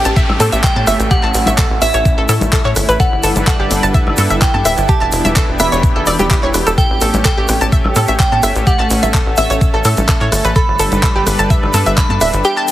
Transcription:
Already playing: A3 C#4 G4 G5, downlifter
0.04 A1 A5 A6, closed hi-hat, shaker
0.16 E5 E6, kick, closed hi-hat, shaker
0.29 A1, low conga, high woodblock
0.40 A2 A4 A5, open hi-hat, high conga, high woodblock, shaker
0.52 A1 E5 E6, closed hi-hat, shaker
0.64 G5, kick, clap, closed hi-hat, shaker
0.76 A2 A5 A6, high conga
0.87 G1 E5 E6, cross-stick, open hi-hat, shaker
1.00 A1, closed hi-hat, shaker
1.11 E4 G4 F#5 G5, kick, closed hi-hat, shaker
1.23 A1 A5 A6, clap
1.34 A1, open hi-hat, shaker
1.46 A1 E5 E6, closed hi-hat, high conga, low conga, shaker
1.58 A4 A5, kick, clap, closed hi-hat, shaker
1.71 A1
1.81 A1 E5 E6, open hi-hat, high conga, shaker
1.94 A1 C#5 C#6, closed hi-hat, shaker
2.05 kick, closed hi-hat, shaker
2.18 A1 A4 A5
2.29 A2 A4 A5, open hi-hat, high woodblock, shaker
2.41 A1, closed hi-hat, low conga, shaker
2.52 A4 A5, kick, clap, closed hi-hat, shaker
2.65 A2 C#5 C#6, clap
2.76 G1, cross-stick, open hi-hat, shaker
2.89 A1 B4 B5, closed hi-hat, shaker
3.00 G3 D4 A4 B4 F#5 A5, kick, closed hi-hat, shaker
3.12 G1
3.23 G1 A4 A5, open hi-hat, shaker
3.36 G1, closed hi-hat, low conga, shaker
3.47 A4 F#5 A5, kick, clap, closed hi-hat, shaker
3.60 G1 G4 G5
3.71 G1, open hi-hat, high conga, shaker
3.83 G1 A5 A6, closed hi-hat, shaker
3.94 E5 E6, kick, closed hi-hat, shaker
4.07 G1, low conga, high woodblock
4.17 G2 A4 A5, open hi-hat, high conga, high woodblock, shaker
4.30 G1 E5 E6, closed hi-hat, shaker
4.42 G5, kick, clap, closed hi-hat, shaker
4.54 G2 A5 A6, high conga
4.65 D1 E5 E6, cross-stick, open hi-hat, shaker
4.77 G1, closed hi-hat, shaker
4.88 E3 B3 D4 G4 G5 A5, kick, closed hi-hat, shaker
5.01 E1 A5 A6, clap
5.12 E1, open hi-hat, shaker
5.25 E1 E5 E6, closed hi-hat, high conga, low conga, shaker
5.36 A4 A5, kick, clap, closed hi-hat, shaker
5.48 E1
5.59 E1 E5 B5 E6, cross-stick, open hi-hat, high conga, shaker
5.72 E1 C#5 C#6, closed hi-hat, shaker
5.83 kick, closed hi-hat, shaker
5.96 F#1 A4 A5
6.06 E1 D5 D6, open hi-hat, high woodblock, shaker
6.19 E1 G4 G5, closed hi-hat, low conga, shaker
6.31 G4 G5, kick, clap, closed hi-hat, shaker
6.43 E1 C#5 C#6, clap
6.54 E1, cross-stick, open hi-hat, shaker
6.67 E1 A4 A5, closed hi-hat, shaker
6.78 A3 C#4 A4 G5 A5, kick, closed hi-hat, shaker
6.90 A1
7.01 A1 A4 A5, open hi-hat, shaker
7.14 A1, closed hi-hat, low conga, shaker
7.25 A4 G5 A5, kick, clap, closed hi-hat, shaker
7.37 A1 G4 G5
7.48 A1, cross-stick, open hi-hat, high conga, shaker
7.61 A1 A5 A6, closed hi-hat, shaker
7.72 E5 E6, kick, closed hi-hat, shaker
7.84 A1, low conga, high woodblock
7.95 A2 A4 A5, open hi-hat, high conga, high woodblock, shaker
8.07 A1 E5 E6, closed hi-hat, shaker
8.19 G5, kick, clap, closed hi-hat, shaker
8.32 A2 A5 A6, high conga
8.43 G1 E5 E6, cross-stick, open hi-hat, shaker
8.56 A1, closed hi-hat, shaker
8.67 G4 A4 F#5 G5, kick, closed hi-hat, shaker
8.79 A1 A5 A6, clap
8.90 A1, open hi-hat, shaker
9.03 A1 E5 E6, closed hi-hat, high conga, low conga, shaker
9.14 A4 A5, kick, clap, closed hi-hat, shaker
9.26 A1
9.37 A1 E5 E6, open hi-hat, high conga, shaker
9.50 A1 C#5 C#6, closed hi-hat, shaker
9.61 kick, closed hi-hat, shaker
9.74 A1 A4 A5
9.84 A2 A4 A5, open hi-hat, high woodblock, shaker
9.97 A1, closed hi-hat, low conga, shaker
10.08 A4 A5, kick, clap, closed hi-hat, shaker
10.21 A2 C#5 C#6, clap
10.32 G1, cross-stick, open hi-hat, shaker
10.44 A1 B4 B5, closed hi-hat, shaker
10.55 G3 D4 A4 B4 A5 B5, kick, closed hi-hat, shaker
10.68 G1
10.79 G1 A4 A5, open hi-hat, shaker
10.92 G1, closed hi-hat, low conga, shaker
11.03 A4 A5 B5, kick, clap, closed hi-hat, shaker
11.15 G1 G4 G5
11.26 G1, cross-stick, open hi-hat, high conga, shaker
11.39 G1 A5 A6, closed hi-hat, shaker
11.50 E5 E6, kick, closed hi-hat, shaker
11.63 G1, low conga, high woodblock
11.74 G2 A4 A5, open hi-hat, high conga, high woodblock, shaker
11.86 G1 E5 E6, closed hi-hat, shaker
11.98 B5, kick, clap, closed hi-hat, shaker
12.09 G2 A5 A6, high conga
12.21 D1 E5 E6, cross-stick, open hi-hat, shaker
12.33 G1, closed hi-hat, shaker
12.44 E3 B3 G4 G5, closed hi-hat, shaker
12.57 A5 A6, clap
12.68 open hi-hat, shaker

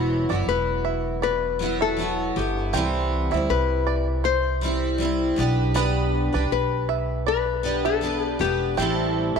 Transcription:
Already playing: E1 E2 E3 F#3 B3 E4 F#4
0.29 F#1 F#3 B3 E4 F#4 D5
0.47 E1 B4
0.85 E5
1.22 B4 D5
1.59 F#3 B3 E4 F#4
1.81 A4 E5
1.97 F#3 B3 E4 F#4
2.36 G1 B3 E4 G4
2.73 C2 C3 E3 G3 B3 C4 E4 G5
3.31 D2 G3 C4 E4 E5
3.50 C2 B4
3.87 D5
4.24 C5
4.61 G3 C4 E4 B4
4.98 G3 C4 E4
5.36 B1 B3 D4 G4 B4
5.74 B3 D4 G4 B4
6.33 C2 D4 G4 B4 D5
6.51 B1 B4
6.89 E5
7.27 B4 D5
7.63 B3 D4 G4 B4
7.85 A4 E5
8.01 B3 D4 G4 B4
8.39 E1 B3 D4 G4 B4
8.77 A1 A2 G3 C4 E4 A4 G5
9.36 B1 A4 E5

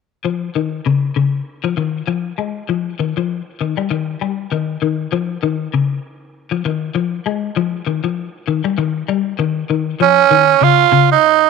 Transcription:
0.25 F3
0.55 D#3
0.86 C#3
1.16 C#3
1.64 F3
1.77 D#3
2.07 F3
2.38 G#3
2.69 F3
2.99 D#3
3.17 F3
3.61 D#3
3.77 G3
3.90 D#3
4.21 G3
4.52 D#3
4.82 D#3
5.12 F3
5.43 D#3
5.74 C#3
6.51 F3
6.65 D#3
6.95 F3
7.26 G#3
7.56 F3
7.86 D#3
8.04 F3
8.48 D#3
8.64 G3
8.78 D#3
9.08 G3
9.39 D#3
9.70 D#3
10.00 F3 C#4
10.31 D#3
10.61 C#3 F4
10.92 C#3
11.11 D#4

